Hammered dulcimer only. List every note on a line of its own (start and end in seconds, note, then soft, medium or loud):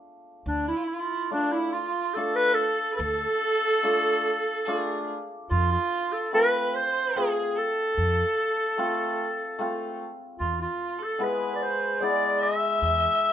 1.31 1.73 A3 medium
1.31 1.73 D4 medium
1.31 1.74 F4 medium
2.16 2.58 A3 medium
2.16 2.58 D4 medium
2.16 2.58 F4 medium
3.83 4.25 A3 medium
3.83 4.25 D4 medium
3.83 4.25 F4 medium
4.67 5.08 A3 medium
4.67 5.08 D4 medium
4.67 5.09 F4 medium
6.33 6.73 A3 medium
6.33 6.74 C4 medium
6.33 6.74 F4 medium
7.16 7.56 A3 medium
7.16 7.56 C4 medium
7.16 7.57 F4 medium
8.78 9.18 A3 medium
8.78 9.19 C4 medium
8.78 9.19 F4 loud
9.59 9.99 A3 medium
9.59 10.00 C4 medium
9.59 10.00 F4 medium
11.19 11.99 G#3 medium
11.19 11.60 B3 medium
11.19 11.61 E4 medium
12.01 13.33 G#3 medium
12.01 12.41 B3 medium
12.01 12.42 E4 medium